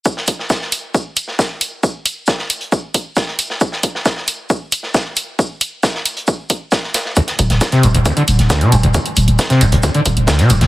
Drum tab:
HH |--o---o---o---o-|--o---ox--o---o-|--o---o---o---o-|--o---ox--o---o-|
SH |x-x-x-x-x-x-x-x-|x-x-x-x-x-x-x-x-|x-x-x-x-x-x-x-x-|x-x-x-x-x-x-x-x-|
SD |-o-ooo-----oo---|----oo------oo-o|-o-ooo-----oo---|----oo------oooo|
BD |o-o-o---o---o---|o---o---o-o-o---|o-o-o---o---o---|o---o---o-o-o---|

HH |xxoxxxoxxxoxxxox|xxoxxxoxxxoxxxox|
SH |x-x-x-x-x-x-x-x-|x-x-x-x-x-x-x-x-|
SD |-o-ooo-----oo---|----oo------oo-o|
BD |o-o-o---o---o---|o---o---o-o-o---|